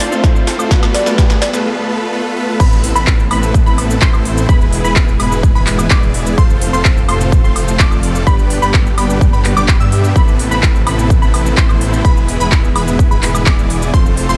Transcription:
Already playing: A3 C4 F4 C5 F5, riser
0.00 D5
0.11 A3 C4 F4 A4 C5, shaker
0.24 kick, snare, shaker
0.36 shaker
0.47 A3 C4 F4 A4 C5, snare, open hi-hat
0.58 A3 C4 F4 C5, high woodblock, shaker
0.70 G3 A3 B3 D4 F4 A4 B4 D5, kick, snare, shaker
0.83 snare, high woodblock, shaker
0.94 D5, snare, open hi-hat
1.06 A3 B3 F4 A4 B4, snare, shaker
1.17 A3 B3 F4 A4 B4, kick, snare, shaker
1.30 snare, shaker
1.42 D5, snare, open hi-hat
1.53 A3 B3 F4 A4 B4, snare, shaker
1.65 A3 B3 F4 A4 B4
1.89 A3 B3 F4 A4 B4
2.13 A3 B3 F4 A4 B4
2.36 A3 B3 F4 A4 B4
2.60 A1 B3 C4 E4 A4 B4 B5, kick, crash, shaker
2.72 shaker
2.84 open hi-hat
2.95 A1 B3 C4 E4 A4 B4 B5, shaker
3.07 kick, clap, shaker
3.20 shaker
3.31 A1 B3 C4 E4 A4 B4 B5, open hi-hat, high woodblock
3.43 shaker
3.54 kick, shaker
3.66 A1 B3 C4 E4 A4 B4 B5, shaker
3.78 open hi-hat, high woodblock
3.90 shaker
4.02 A1 B3 C4 E4 A4 C5 C6, kick, clap, shaker
4.14 high woodblock, shaker
4.25 open hi-hat
4.38 shaker
4.49 E1 G#2 B2 G#3 B3 E4 G#4 B4 B5, kick, shaker
4.61 shaker
4.73 open hi-hat
4.84 E1 G#3 B3 E4 G#4 B4 B5, shaker
4.96 kick, clap, shaker
5.08 shaker
5.20 E1 G#3 B3 E4 G#4 B4 B5, open hi-hat, high woodblock
5.32 shaker
5.43 kick, shaker
5.55 E1 G#3 B3 E4 G#4 B4 B5, shaker
5.67 clap, open hi-hat
5.79 high woodblock, shaker
5.90 E1 G#3 B3 E4 G#4 D5 D6, kick, clap, shaker
6.03 shaker
6.14 open hi-hat
6.26 shaker
6.38 F1 A2 C3 F3 A3 C4 F4 A4 C5 C6, kick, shaker
6.50 shaker
6.61 open hi-hat
6.73 F1 A3 C4 F4 A4 C5 C6, shaker
6.85 kick, clap, shaker
6.97 shaker
7.09 F1 A3 C4 F4 A4 C5 C6, open hi-hat, high woodblock
7.21 shaker
7.32 kick, shaker
7.44 F1 A3 C4 F4 A4 C5 C6, shaker
7.56 open hi-hat, high woodblock
7.68 shaker
7.79 F1 A3 C4 F4 A4 D5 D6, kick, clap, shaker
7.91 high woodblock, shaker
8.03 open hi-hat
8.15 shaker
8.27 G1 B2 D3 G3 B3 D4 G4 B4 B5, kick, shaker
8.39 shaker
8.50 open hi-hat
8.62 G1 G3 B3 D4 G4 B4 B5, shaker
8.74 kick, clap, shaker
8.86 shaker
8.98 G1 G3 B3 D4 G4 B4 B5, open hi-hat, high woodblock
9.10 shaker
9.21 kick, shaker
9.33 G1 G3 B3 D4 G4 B4 B5, shaker
9.45 clap, open hi-hat
9.57 G1 G3 B3 D4 G4 D5 D6, high woodblock, shaker
9.68 kick, clap, shaker
9.80 G2 G3 B3 D4 G4 E5 E6, shaker
9.92 open hi-hat
10.04 shaker
10.16 A1 C3 E3 A3 B3 C4 E4 A4 B4 B5, kick, shaker
10.28 shaker
10.39 open hi-hat
10.51 A1 B3 C4 E4 A4 B4 B5, shaker
10.63 kick, clap, shaker
10.75 shaker
10.86 A1 B3 C4 E4 A4 B4 B5, open hi-hat, high woodblock
10.99 shaker
11.10 kick, shaker
11.22 A1 B3 C4 E4 A4 B4 B5, shaker
11.34 open hi-hat, high woodblock
11.46 shaker
11.57 A1 B3 C4 E4 A4 C5 C6, kick, clap, shaker
11.69 high woodblock, shaker
11.81 open hi-hat
11.93 shaker
12.05 E1 G#2 B2 G#3 B3 E4 G#4 B4 B5, kick, shaker
12.17 shaker
12.28 open hi-hat
12.40 E1 G#3 B3 E4 G#4 B4 B5, shaker
12.52 kick, clap, shaker
12.64 shaker
12.75 E1 G#3 B3 E4 G#4 B4 B5, open hi-hat, high woodblock
12.88 shaker
12.99 kick, shaker
13.11 E1 G#3 B3 E4 G#4 B4 B5, shaker
13.23 clap, open hi-hat
13.35 high woodblock, shaker
13.46 E1 G#3 B3 E4 G#4 D5 D6, kick, clap, shaker
13.59 shaker
13.70 open hi-hat
13.82 shaker
13.93 F1 A2 C3 F3 A3 C4 F4 A4 C5 C6, kick, shaker
14.06 shaker
14.17 open hi-hat
14.29 F1 A3 C4 F4 A4 C5 C6, shaker

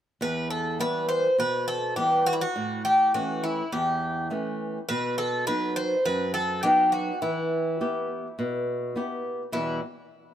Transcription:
0.21 E2 B4
0.50 A4
0.79 E3 G3 B3 B4
1.09 C5
1.38 B2 B4
1.68 A4
1.96 E3 G3 B3 G4
2.26 F#4
2.33 E4
2.41 F#4
2.56 A2
2.85 G4
3.14 E3 A3 C#4 F#4
3.44 E4
3.72 E2 G4
4.30 E3 A3 C#4
4.89 B2 B4
5.18 A4
5.47 F#3 B3 D#4 B4
5.76 C5
6.06 F#2 B4
6.34 A4
6.63 F#3 B3 D#4 G4
6.92 F#4
7.22 E3 E4
7.81 B3 E4 G4
8.39 B2
8.96 B3 E4 G4
9.52 E2 B2 E3 G3 B3 E4

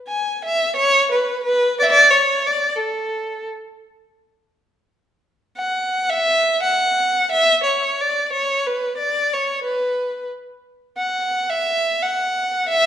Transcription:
0.08 G#5
0.44 E5
0.76 C#5
1.11 B4
1.43 B4
1.79 D5 E5
1.91 D5
2.10 C#5
2.47 D5
2.76 A4
5.58 F#5
6.10 E5
6.63 F#5
7.32 E5
7.63 C#5
8.01 D5
8.33 C#5
8.67 B4
8.98 D5
9.33 C#5
9.64 B4
10.98 F#5
11.50 E5
12.03 F#5
12.69 E5

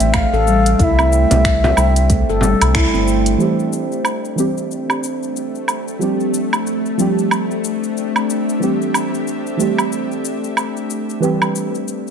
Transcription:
Already playing: A3 C4 D4 G4 C5 E5 G5
0.00 A1, closed hi-hat, cabasa
0.13 A3 F5, finger snap, kick, closed hi-hat, cabasa, low woodblock
0.33 A1 A4, cabasa
0.47 G3, cabasa
0.66 closed hi-hat, cabasa
0.79 C2 E4 F5, kick, closed hi-hat, cabasa
0.84 E5
0.99 C4, cabasa, low woodblock
1.12 cabasa
1.31 C2, closed hi-hat, frame drum, cabasa
1.45 finger snap, kick, closed hi-hat, cabasa
1.64 C4, frame drum, cabasa
1.77 C2 A3, cabasa, low woodblock
1.96 closed hi-hat, cabasa
2.10 A3, kick, closed hi-hat, cabasa
2.29 G1 A4, cabasa
2.41 G3, frame drum, cabasa
2.61 C2, closed hi-hat, cabasa, low woodblock
2.75 E4, finger snap, kick, closed hi-hat, cabasa
2.94 G1 C4, cabasa
3.08 cabasa
3.26 closed hi-hat, cabasa
3.38 E3 G3 A3 C4 G4 C5, cabasa
3.59 cabasa
3.73 cabasa
3.92 cabasa
4.05 cabasa, low woodblock
4.25 cabasa
4.35 E3 G3 A3 C4, cabasa
4.40 G4
4.58 cabasa
4.71 cabasa
4.90 cabasa, low woodblock
5.03 cabasa
5.23 cabasa
5.36 cabasa
5.55 cabasa
5.68 cabasa, low woodblock
5.88 cabasa
5.99 F3 G3 C4 D4, cabasa
6.03 G4
6.20 D4, cabasa
6.34 C4, cabasa
6.53 cabasa, low woodblock
6.60 G4
6.67 cabasa
6.71 E5
6.86 cabasa
6.97 F3 G3 C4 D4 G4, cabasa
7.19 cabasa
7.31 cabasa, low woodblock
7.51 cabasa
7.64 cabasa
7.84 cabasa
7.97 cabasa
8.16 cabasa, low woodblock
8.30 cabasa
8.49 cabasa
8.59 E3 G3 A3 C4, cabasa
8.63 G4
8.82 cabasa
8.94 cabasa, low woodblock
9.14 cabasa
9.27 cabasa
9.47 cabasa
9.57 E3 G3 A3 C4, cabasa
9.61 G4
9.78 cabasa, low woodblock
9.92 cabasa
10.11 cabasa
10.25 cabasa
10.44 cabasa
10.57 cabasa, low woodblock
10.77 cabasa
10.90 cabasa
11.09 cabasa
11.20 E3 G3 C4 G4 B4, cabasa
11.42 cabasa, low woodblock
11.55 cabasa
11.75 cabasa
11.88 cabasa
12.07 cabasa

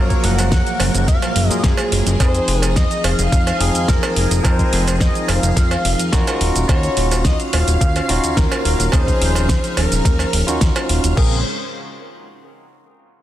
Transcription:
Already playing: F#2 F3 F#3 G#3 A#3 A#4 C#5
0.10 kick, closed hi-hat, shaker
0.24 F#1 F#5, open hi-hat
0.39 closed hi-hat, cowbell, shaker
0.52 F#2, kick, snare, closed hi-hat, shaker
0.67 closed hi-hat, shaker
0.80 F#1, open hi-hat, cowbell
0.94 F#1, closed hi-hat, shaker
1.08 F#2 F5, kick, snare, closed hi-hat, shaker
1.22 closed hi-hat, cowbell, shaker
1.36 F#1, open hi-hat
1.49 F#2 F#3 A#3 F4 G#4 D#5, closed hi-hat, shaker
1.64 F#2 G#4, kick, snare, closed hi-hat, shaker
1.77 closed hi-hat, cowbell, shaker
1.92 F#1, open hi-hat
2.07 F#1, closed hi-hat, shaker
2.19 F2 F3 C4 D#4 G#4 C5, kick, closed hi-hat, cowbell, shaker
2.34 closed hi-hat, shaker
2.48 F1, open hi-hat
2.61 A#4, closed hi-hat, cowbell, shaker
2.76 F2 D#5, kick, snare, closed hi-hat, shaker
2.91 closed hi-hat, shaker
3.04 F1 F5, open hi-hat, cowbell
3.19 F1, closed hi-hat, shaker
3.32 F2, kick, closed hi-hat, shaker
3.47 closed hi-hat, cowbell, shaker
3.59 F1 F3 C4 D#4 G#4, open hi-hat
3.75 F2, closed hi-hat, shaker
3.88 F2 A#4, kick, snare, closed hi-hat, shaker
4.03 closed hi-hat, cowbell, shaker
4.16 F1, open hi-hat
4.31 F1, closed hi-hat, shaker
4.43 F2 F3 C4 D#4 A#4 C5, kick, closed hi-hat, cowbell, shaker
4.59 kick, closed hi-hat, shaker
4.73 F1, open hi-hat
4.88 closed hi-hat, cowbell, shaker
5.00 F2 D#5, kick, snare, closed hi-hat, shaker
5.15 closed hi-hat, shaker
5.28 F1 F5, open hi-hat, cowbell
5.43 F1, closed hi-hat, shaker
5.57 F2, kick, snare, closed hi-hat, shaker
5.71 closed hi-hat, cowbell, shaker
5.85 F1, open hi-hat
5.99 F2, closed hi-hat, shaker
6.12 F2 C#4 D#4 F4 F#4 A#4, kick, snare, closed hi-hat, shaker
6.27 closed hi-hat, cowbell, shaker
6.41 D#1 C#4 F5, open hi-hat
6.56 D#1, closed hi-hat, shaker
6.68 D#2 C#4 D#4 F4 F#4 C#5, kick, closed hi-hat, cowbell, shaker
6.83 closed hi-hat, shaker
6.97 D#1, open hi-hat
7.11 closed hi-hat, cowbell, shaker
7.25 D#2 D#5, kick, snare, closed hi-hat, shaker
7.40 closed hi-hat, shaker
7.53 D#1 F5, open hi-hat, cowbell
7.67 D#1, closed hi-hat, shaker
7.81 D#2, kick, closed hi-hat, shaker
7.96 closed hi-hat, cowbell, shaker
8.08 D#1 C#4 D#4 F4 F#4, open hi-hat
8.24 D#2, closed hi-hat, shaker
8.37 D#2 A#4, kick, snare, closed hi-hat, shaker
8.52 closed hi-hat, cowbell, shaker
8.65 D#1, open hi-hat
8.79 D#1, closed hi-hat, shaker
8.92 D#2 F3 C#4 D#4 G#4 C5, kick, closed hi-hat, cowbell, shaker
9.08 kick, closed hi-hat, shaker
9.21 D#1, open hi-hat
9.35 closed hi-hat, cowbell, shaker
9.49 D#2, kick, snare, closed hi-hat, shaker
9.64 closed hi-hat, shaker
9.77 D#1 A#4, open hi-hat, cowbell
9.92 D#1, closed hi-hat, shaker
10.05 D#2, kick, snare, closed hi-hat, shaker
10.19 closed hi-hat, cowbell, shaker
10.33 D#1, open hi-hat
10.47 D#2 C#4 D#4 F4 F#4, closed hi-hat, shaker
10.61 D#2, kick, snare, closed hi-hat, shaker
10.76 closed hi-hat, cowbell, shaker
10.89 D#1, open hi-hat
11.04 D#1, closed hi-hat, shaker
11.16 A#1 C#3 G#3 A#3 C4 C#4 G#4 A#4 C5, kick, crash

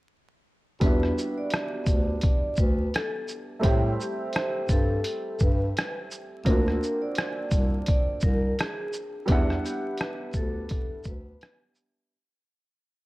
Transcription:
0.80 E2 G3 B3 D4 B4, kick, closed hi-hat
0.85 E4 F#4
1.03 cross-stick
1.18 shaker
1.38 D5
1.50 cross-stick, closed hi-hat
1.86 D2, kick, closed hi-hat, shaker
2.21 D5, kick, closed hi-hat
2.56 D2 B4, kick, shaker
2.94 A4, cross-stick, closed hi-hat
3.28 shaker
3.59 G3 A3 C4, closed hi-hat
3.64 A2 E4 G4, kick
4.00 G4, shaker
4.33 C5, cross-stick, closed hi-hat
4.69 G2 A4, kick, closed hi-hat, shaker
5.04 closed hi-hat
5.39 G2 B4, kick, shaker
5.77 cross-stick, closed hi-hat
6.11 shaker
6.45 D2 A#3 C4 D4 A#4, kick, closed hi-hat
6.50 F4 F#4
6.68 cross-stick
6.83 shaker
7.02 D5
7.15 cross-stick, closed hi-hat
7.51 C2, kick, closed hi-hat, shaker
7.86 D5, kick, closed hi-hat
8.21 C2 A#4, kick, shaker
8.59 G#4, cross-stick, closed hi-hat
8.93 shaker
9.26 E2 G3 B3 D4, kick, closed hi-hat
9.30 E4 F#5
9.50 cross-stick
9.66 G4, closed hi-hat, shaker
9.98 B4, cross-stick, closed hi-hat
10.33 D2 A4, kick, shaker
10.69 kick, closed hi-hat
11.04 D2 B4, kick, shaker
11.41 cross-stick, closed hi-hat
11.75 shaker

